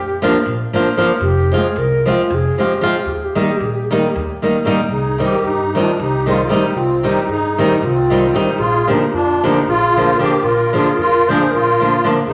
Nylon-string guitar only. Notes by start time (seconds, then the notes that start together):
0.22 F3 A#3 D4 F4
0.73 F3 A#3 D4 F4
0.97 F3 A#3 D4 F4
1.52 F3 G#3 C4 F4
2.06 F3 G#3 C4 F4
2.58 F3 G#3 C4 F4
2.81 F3 G#3 C4 F4
3.35 D#3 G3 A#3 D#4
3.91 D#3 G3 A#3 D#4
4.42 D#3 G3 A#3 D#4
4.65 D#3 G3 A#3 D#4
5.18 D#3 G3 C4 D#4
5.75 D#3 G3 C4 D#4
6.26 D#3 G3 C4 D#4
6.49 D#3 G3 C4 D#4
7.03 D#3 G3 C4 D#4
7.58 D#3 G3 C4 D#4
8.10 D#3 G3 C4 D#4
8.34 D#3 G3 C4 D#4
8.87 D3 F3 A#3 D4
9.43 D3 F3 A#3 D4
9.96 D3 F3 A#3 D4
10.19 D3 F3 A#3 D4
10.73 D3 F3 A#3 D4
11.29 D3 F3 A#3 D4
11.80 D3 F3 A#3 D4
12.04 D3 F3 A#3 D4